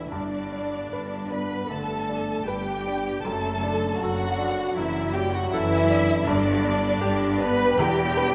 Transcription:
Already playing: grand piano A2 D4 A4, french horn section E3, viola section E4, violin section E4 E5
0.11 double bass section G1, cello section G2, grand piano G2, french horn section D3, viola section D4, violin section D4 D5
0.52 grand piano D4
0.91 double bass section G1, cello section G2, grand piano B4
1.30 french horn section B3, grand piano D4, viola section B4, violin section B4 B5
1.68 double bass section G1, cello section G2, grand piano D3, french horn section A3, viola section A4, violin section A4 A5
2.09 grand piano D4
2.45 double bass section G1, cello section G2, french horn section G3, viola section G4, violin section G4 G5, grand piano B4
2.87 grand piano D4
3.22 double bass section F#1, cello section F#2, grand piano F#2, french horn section A3, violin section A4 A5, viola section A4
3.63 grand piano D4
3.99 double bass section F#1, cello section F#2, french horn section F#3, violin section F#4 F#5, viola section F#4
4.04 grand piano A4
4.38 grand piano D4
4.75 double bass section F#1, cello section F#2, grand piano F#2, french horn section E3, violin section E4 E5, viola section E4
5.13 grand piano F#3, french horn section G3, violin section G4 G5, viola section G4
5.32 french horn section F#3, violin section F#4 F#5, viola section F#4
5.51 double bass section F#1, cello section F#2, french horn section E3, violin section E4 E5, viola section E4, grand piano A4
5.90 grand piano D4
6.27 double bass section G1, grand piano G2, cello section G2, timpani G2, french horn section D3, violin section D4 D5, viola section D4
6.65 grand piano D4
7.01 double bass section G1, cello section G2, grand piano G4
7.38 french horn section B3, grand piano D4, violin section B4 B5, viola section B4
7.77 double bass section E1, cello section E2, grand piano E2, french horn section G3, violin section G4 G5, viola section G4
8.17 grand piano G4 B4

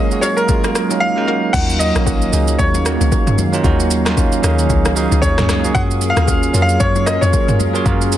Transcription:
Already playing: tine electric piano F#3 G#3 A#3 C#4 F4 F#4 G#4, analog synth pad F#3 C#4 G#4 A#4 F5, grand piano D#5
0.11 tine electric piano F#3 G#3 A#3 C#4 F#4, shaker
0.21 synth pluck F#4 A#4 F5, grand piano C#5, high bongo, shaker
0.37 grand piano A#4, shaker
0.48 tine electric piano F#3 G#3 A#3 C#4 F4, kick, low conga, shaker
0.64 cross-stick, low bongo, shaker
0.75 cross-stick, shaker
0.89 tine electric piano F#3 G#3 A#3 C#4 D#4, low bongo, shaker
1.00 grand piano F5
1.16 tine electric piano F#3 G#3 A#3 C#4 D#4
1.28 synth pluck F#4 A#4 F5
1.53 log drum bass D#2, analog synth pad D#3 F#3 A#3 C#4 F5, tine electric piano F#3 A#3 C#4 D#4 F4, grand piano F#5, kick, crash, low conga, shaker
1.70 shaker
1.79 grand piano D#5, shaker
1.95 log drum bass A#1, tine electric piano F#3 A#3 C#4 D#4 F#4, cross-stick, low bongo, shaker
2.06 kick, high bongo, shaker
2.22 shaker
2.32 log drum bass C#2, tine electric piano F#3 A#3 C#4 D#4 G#4, shaker
2.48 shaker
2.58 log drum bass D#2, grand piano C#5, kick, low conga, shaker
2.74 low bongo, shaker
2.85 tine electric piano F#3 A#3 C#4 D#4 F#4, cross-stick, shaker
3.01 log drum bass C#2, low bongo, shaker
3.12 kick, high bongo, shaker
3.27 mid tom, shaker
3.38 low conga, shaker
3.52 tine electric piano F#3 A#3 C#4 D#4 F4, shaker
3.63 log drum bass D#2, tine electric piano F#3 A#3 C#4 D#4 F#4, kick, low conga, shaker
3.80 shaker
3.91 shaker
4.05 tine electric piano F#3 A#3 C#4 D#4 F4, cross-stick, snare, low bongo, shaker
4.17 kick, high bongo, shaker
4.32 shaker
4.43 log drum bass D#2, tine electric piano F#3 A#3 C#4 D#4 G#4, cross-stick, shaker
4.59 shaker
4.70 log drum bass C#2, kick, low conga, shaker
4.85 cross-stick, low bongo, shaker
4.95 tine electric piano F#3 A#3 C#4 D#4 G#4, shaker
5.12 log drum bass C#2, low bongo, shaker
5.22 log drum bass D#2, grand piano C#5, kick, high bongo, shaker
5.38 cross-stick, snare, mid tom, shaker
5.49 log drum bass C#2, cross-stick, snare, low conga, shaker
5.63 tine electric piano F#3 A#3 C#4 D#4 G#4, shaker
5.74 log drum bass F#2, tine electric piano F#3 A#3 C#4 F4 G#4, analog synth pad F#3 G#4 A#4, grand piano F#5, kick, low conga, shaker
5.91 shaker
6.01 shaker
6.10 grand piano F5
6.16 log drum bass D#2, tine electric piano F#3 A#3 C#4 F4 G#4, cross-stick, low bongo, shaker
6.28 kick, high bongo, shaker
6.43 shaker
6.53 log drum bass F2, tine electric piano F#3 A#3 C#4 F4 A#4, shaker
6.62 grand piano F5
6.69 shaker
6.80 log drum bass F#2, grand piano C#5, kick, low conga, shaker
6.95 low bongo, shaker
7.06 tine electric piano F#3 A#3 C#4 F4 A#4, grand piano D#5, cross-stick, shaker
7.21 log drum bass F2, grand piano C#5, low bongo, shaker
7.33 kick, high bongo, shaker
7.48 mid tom, shaker
7.60 low conga, shaker
7.74 tine electric piano F#3 A#3 C#4 F4 G#4, shaker
7.85 log drum bass F#2, tine electric piano F#3 A#3 C#4 F4 A#4, kick, low conga, shaker
8.01 shaker
8.12 shaker

